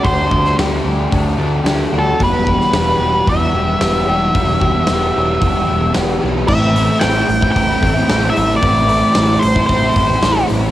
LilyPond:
<<
  \new Staff \with { instrumentName = "Lead electric guitar" } { \time 4/4 \key a \minor \tempo 4 = 112 c''4 r2 r8 a'8 | b'2 e''2~ | e''2. r4 | e''4 g''4 g''4. e''8 |
d''4. c''8 c''4. r8 | }
  \new Staff \with { instrumentName = "Overdriven electric guitar" } { \time 4/4 \key a \minor <d a d' g'>8 <a d' g'>8 <d a d' g'>8 <a d' g'>8 <d a d' g'>8 <a d' g'>8 <d a d' g'>8 <a d' g'>8 | <e, b, e g b g'>8 <e g b g'>8 <e g b g'>8 <e g b g'>8 <e, b, e g b g'>8 <e g b g'>8 <e g b g'>8 <e g b g'>8 | <e, b, e g b g'>8 <e g b g'>8 <e g b g'>8 <e g b g'>8 <e, b, e g b g'>8 <e g b g'>8 <e g b g'>8 <e g b g'>8 | <a, e a c' e'>8 <e a c' e'>8 <a, e a c' e'>16 <a c' e'>8 <a c' e'>8 <a c' e'>16 <e a c' e'>16 <a c' e'>16 <a, e a c' e'>16 <a c' e'>16 <e a c' e'>8 |
<a, e a c' e'>8 <e a c' e'>8 <a, e a c' e'>16 <a c' e'>8 <a c' e'>8 <a c' e'>16 <e a c' e'>16 <a c' e'>16 <a, e a c' e'>16 <a c' e'>16 <e a c' e'>8 | }
  \new Staff \with { instrumentName = "Picked electric bass" } { \clef bass \time 4/4 \key a \minor d,8 d,8 d,8 d,8 d,8 d,8 d,8 d,8 | e,,4 e,,8 e,,8 e,8 e,,8 e,,8 e,,8 | e,,8 e,,8 e,,8 e,,8 e,,8 e,,8 e,,8 b,,8 | a,,4 a,,8 a,,8 a,,8 a,,8 a,,8 a,,8 |
a,,4 a,,8 a,,8 a,,8 a,,8 a,,8 a,,8 | }
  \new DrumStaff \with { instrumentName = "Drums" } \drummode { \time 4/4 <hho bd>8 bd16 sn16 <hho sn>4 <hho bd>4 <hho sn>4 | <hho bd>8 bd16 sn16 <hho sn>4 <hho bd>4 <hho sn>4 | <hho bd>8 bd8 <hho sn>4 <hho bd>4 <hho sn>4 | <cymc bd>8 hho8 <hho sn>8 hho16 bd16 <hho bd>8 <hho bd>8 <hho sn>8 hho8 |
<hho bd>8 hho8 <hho sn>8 hho16 bd16 <hho bd>8 <hho bd>8 <hho sn>8 hho8 | }
>>